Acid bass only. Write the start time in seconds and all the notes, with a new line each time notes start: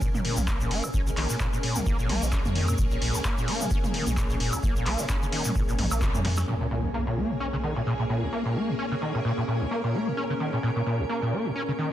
0.02 A#2
0.15 A#2
0.25 A#2
0.38 A#1
0.48 A#3
0.61 A#2
0.71 A#3
0.84 A#2
0.94 C#4
1.07 C#3
1.17 D#3
1.30 A#2
1.40 A#2
1.53 A#2
1.63 A#2
1.76 A#1
1.86 A#3
1.99 A#2
2.09 A#3
2.22 A#2
2.32 C#4
2.45 C#3
2.55 D#3
2.68 A#2
2.79 A#2
2.91 A#2
3.02 A#2
3.15 A#1
3.25 A#3
3.38 A#2
3.48 A#3
3.61 A#2
3.71 C#4
3.84 C#3
3.94 D#3
4.07 A#2
4.17 A#2
4.30 A#2
4.40 A#2
4.53 A#1
4.63 A#3
4.76 A#2
4.86 A#3
4.99 A#2
5.09 C#4
5.22 C#3
5.33 D#3
5.45 A#2
5.55 A#2
5.68 A#2
5.79 G#2
5.91 A#3
6.02 A#2
6.15 A#2
6.25 A#2
6.38 C#4
6.48 A#2
6.61 A#2
6.71 A#2
6.84 A#1
6.94 A#3
7.07 A#2
7.17 A#3
7.30 A#2
7.40 C#4
7.53 C#3
7.63 D#3
7.76 A#2
7.86 A#2
7.99 A#2
8.09 A#2
8.22 A#1
8.32 A#3
8.45 A#2
8.56 A#3
8.68 A#2
8.79 C#4
8.92 C#3
9.02 D#3
9.15 A#2
9.25 A#2
9.38 A#2
9.48 A#2
9.61 A#1
9.71 A#3
9.84 A#2
9.94 A#3
10.07 A#2
10.17 C#4
10.30 C#3
10.40 D#3
10.53 A#2
10.63 A#2
10.76 A#2
10.86 A#2
10.99 A#1
11.09 A#3
11.22 A#2
11.32 A#3
11.45 A#2
11.55 C#4
11.68 C#3
11.78 D#3